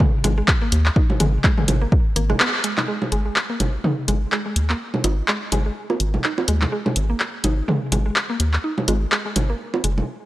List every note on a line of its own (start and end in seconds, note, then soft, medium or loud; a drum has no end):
0.00 kick loud
0.00 mid tom medium
0.24 0.42 G#1 loud
0.24 0.32 G#3 loud
0.24 closed hi-hat medium
0.24 low bongo medium
0.38 0.42 G#3 medium
0.48 kick loud
0.48 clap medium
0.62 0.68 A#3 medium
0.72 0.90 D#2 loud
0.72 closed hi-hat medium
0.86 clap medium
0.96 1.04 D#4 medium
0.96 kick loud
1.10 low bongo medium
1.20 1.38 G#1 loud
1.20 1.25 G#3 loud
1.20 closed hi-hat medium
1.20 mid tom medium
1.44 1.52 G#3 loud
1.44 kick loud
1.44 clap medium
1.58 1.62 G#3 medium
1.58 mid tom medium
1.68 1.86 G#1 medium
1.68 closed hi-hat medium
1.68 low bongo medium
1.82 1.88 A#3 medium
1.92 kick loud
2.16 2.34 G#1 loud
2.16 2.24 A#3 medium
2.16 closed hi-hat medium
2.30 2.36 G#3 loud
2.30 low bongo medium
2.40 2.45 B3 medium
2.40 clap medium
2.64 2.72 G#3 medium
2.64 closed hi-hat medium
2.78 2.84 D#4 medium
2.78 clap medium
2.78 low bongo medium
2.88 2.93 G#3 loud
3.02 low bongo medium
3.12 3.30 G#1 loud
3.12 3.20 G#3 loud
3.12 closed hi-hat medium
3.26 3.30 G#3 medium
3.36 clap medium
3.50 3.56 A#3 medium
3.60 3.78 G#1 medium
3.60 closed hi-hat medium
3.60 low bongo medium
3.84 3.92 D#4 medium
3.84 mid tom medium
4.08 4.26 G#1 medium
4.08 4.13 G#3 loud
4.08 closed hi-hat medium
4.08 low bongo soft
4.32 4.40 G#3 medium
4.32 clap medium
4.46 4.50 G#3 medium
4.56 4.74 D#2 medium
4.56 closed hi-hat medium
4.70 4.76 A#3 medium
4.70 clap medium
4.94 low bongo medium
5.04 5.22 G#1 loud
5.04 5.12 D#4 medium
5.04 closed hi-hat medium
5.04 high bongo medium
5.28 5.33 G#3 loud
5.28 clap medium
5.52 5.70 G#1 medium
5.52 5.60 G#3 loud
5.52 closed hi-hat medium
5.52 low bongo medium
5.66 5.70 G#3 medium
5.90 5.96 A#3 medium
5.90 high bongo medium
6.00 6.18 G#1 medium
6.00 closed hi-hat medium
6.14 low bongo soft
6.24 6.32 D#4 medium
6.24 clap medium
6.38 high bongo medium
6.48 6.66 D#2 medium
6.48 6.53 G#3 medium
6.48 closed hi-hat medium
6.62 clap medium
6.62 low bongo medium
6.72 6.80 G#3 loud
6.86 6.90 G#3 medium
6.86 low bongo medium
6.96 7.14 G#1 medium
6.96 closed hi-hat medium
7.10 7.16 A#3 medium
7.20 clap medium
7.44 7.62 G#1 medium
7.44 7.52 D#4 medium
7.44 closed hi-hat medium
7.44 low bongo medium
7.68 7.73 G#3 loud
7.68 mid tom medium
7.92 8.10 G#1 loud
7.92 8.00 G#3 loud
7.92 closed hi-hat medium
7.92 low bongo medium
8.06 8.10 G#3 medium
8.16 clap medium
8.30 8.36 A#3 medium
8.40 8.58 D#2 medium
8.40 closed hi-hat medium
8.53 clap medium
8.64 8.72 D#4 medium
8.78 low bongo medium
8.88 9.06 G#1 loud
8.88 8.93 G#3 loud
8.88 closed hi-hat medium
8.88 high bongo medium
9.12 9.20 G#3 loud
9.12 clap medium
9.26 9.30 G#3 medium
9.36 9.54 G#1 medium
9.36 closed hi-hat medium
9.36 low bongo medium
9.50 9.56 A#3 medium
9.74 high bongo medium
9.84 10.02 F#1 loud
9.84 9.89 G#3 medium
9.84 closed hi-hat medium
9.98 low bongo medium